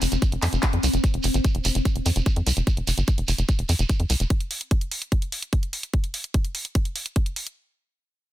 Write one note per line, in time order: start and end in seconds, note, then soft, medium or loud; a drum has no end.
0.00 0.07 F1 loud
0.00 1.05 C4 medium
0.00 open hi-hat loud
0.00 shekere loud
0.12 0.18 F1 medium
0.12 closed hi-hat soft
0.12 shekere soft
0.22 kick loud
0.22 closed hi-hat medium
0.22 shekere medium
0.32 0.38 F1 medium
0.32 closed hi-hat medium
0.42 0.48 F2 loud
0.42 clap medium
0.42 open hi-hat loud
0.42 shekere medium
0.53 0.58 F1 loud
0.53 closed hi-hat soft
0.53 shekere soft
0.62 kick loud
0.62 clap loud
0.62 closed hi-hat medium
0.62 shekere medium
0.73 0.79 F2 medium
0.73 closed hi-hat soft
0.83 0.89 C2 loud
0.83 open hi-hat loud
0.83 shekere loud
0.94 0.99 F1 medium
0.94 closed hi-hat soft
0.94 shekere soft
1.04 kick loud
1.04 closed hi-hat medium
1.04 shekere medium
1.14 1.20 F1 medium
1.14 closed hi-hat soft
1.23 1.30 F1 loud
1.23 open hi-hat loud
1.23 shekere medium
1.34 1.40 G1 medium
1.34 closed hi-hat soft
1.34 shekere soft
1.45 kick loud
1.45 closed hi-hat medium
1.45 shekere soft
1.55 1.60 F1 medium
1.55 closed hi-hat medium
1.65 1.71 F1 loud
1.65 open hi-hat loud
1.65 shekere medium
1.75 1.81 F1 medium
1.75 closed hi-hat medium
1.75 shekere soft
1.85 kick loud
1.85 closed hi-hat medium
1.85 shekere soft
1.96 2.01 F1 medium
1.96 closed hi-hat soft
2.06 2.11 F2 loud
2.06 open hi-hat loud
2.06 shekere medium
2.16 2.22 F1 loud
2.16 closed hi-hat soft
2.16 shekere soft
2.26 kick loud
2.26 closed hi-hat medium
2.26 shekere medium
2.36 2.42 F2 medium
2.36 closed hi-hat medium
2.47 2.52 C2 loud
2.47 open hi-hat loud
2.47 shekere medium
2.57 2.62 F1 medium
2.57 closed hi-hat soft
2.57 shekere soft
2.67 kick loud
2.67 closed hi-hat medium
2.67 shekere medium
2.77 2.83 F1 medium
2.77 closed hi-hat medium
2.87 2.93 F1 loud
2.87 open hi-hat loud
2.87 shekere medium
2.98 3.03 G1 medium
2.98 closed hi-hat soft
2.98 shekere soft
3.07 kick loud
3.07 closed hi-hat medium
3.07 shekere soft
3.18 3.24 F1 medium
3.18 closed hi-hat medium
3.28 3.34 F1 loud
3.28 open hi-hat medium
3.28 shekere medium
3.38 3.44 F1 medium
3.38 closed hi-hat soft
3.38 shekere soft
3.49 kick loud
3.49 closed hi-hat medium
3.49 shekere medium
3.59 3.64 F1 medium
3.59 closed hi-hat medium
3.69 3.75 F2 loud
3.69 open hi-hat loud
3.69 shekere medium
3.79 3.85 F1 loud
3.79 closed hi-hat medium
3.79 shekere soft
3.89 kick loud
3.89 closed hi-hat medium
3.89 shekere medium
4.00 4.05 F2 medium
4.00 closed hi-hat medium
4.10 4.15 C2 loud
4.10 open hi-hat loud
4.10 shekere medium
4.20 4.26 F1 medium
4.20 closed hi-hat soft
4.20 shekere soft
4.30 kick loud
4.30 closed hi-hat medium
4.40 closed hi-hat medium
4.51 open hi-hat loud
4.61 closed hi-hat medium
4.71 kick loud
4.71 closed hi-hat medium
4.81 closed hi-hat medium
4.92 open hi-hat loud
5.02 closed hi-hat medium
5.12 kick loud
5.12 closed hi-hat loud
5.22 closed hi-hat medium
5.32 open hi-hat loud
5.42 closed hi-hat medium
5.53 kick loud
5.53 closed hi-hat loud
5.63 closed hi-hat medium
5.73 open hi-hat loud
5.83 closed hi-hat soft
5.94 kick loud
5.94 closed hi-hat loud
6.04 closed hi-hat medium
6.14 open hi-hat loud
6.24 closed hi-hat medium
6.34 kick loud
6.34 closed hi-hat medium
6.45 closed hi-hat medium
6.55 open hi-hat loud
6.65 closed hi-hat medium
6.75 kick loud
6.75 closed hi-hat loud
6.85 closed hi-hat medium
6.96 open hi-hat loud
7.06 closed hi-hat medium
7.16 kick loud
7.16 closed hi-hat loud
7.26 closed hi-hat medium
7.36 open hi-hat medium
7.47 closed hi-hat medium